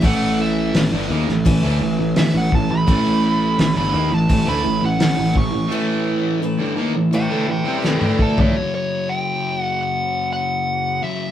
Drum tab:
HH |o---o---o---o---|o---o---o---o---|----------------|----------------|
SD |----o--o----o---|----o-------o---|------------o---|----------------|
T2 |----------------|----------------|-------------o--|----------------|
FT |----------------|----------------|---------------o|----------------|
BD |o-------o-----o-|o-------o-----o-|--------------o-|----------------|